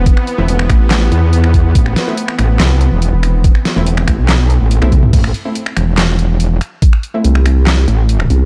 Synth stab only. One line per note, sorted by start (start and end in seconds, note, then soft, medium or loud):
0.38 0.52 A3 medium
0.38 0.52 C4 medium
0.38 0.52 E4 loud
2.07 2.16 A3 medium
2.07 2.16 C4 medium
2.07 2.16 E4 medium
3.76 3.90 A3 medium
3.76 3.90 C4 medium
3.76 3.90 E4 loud
4.82 4.90 A3 loud
4.82 4.90 C4 medium
4.82 4.90 E4 loud
5.45 5.54 A3 medium
5.45 5.54 C4 medium
5.45 5.54 E4 medium
7.14 7.28 A3 medium
7.14 7.28 C4 medium
7.14 7.28 E4 loud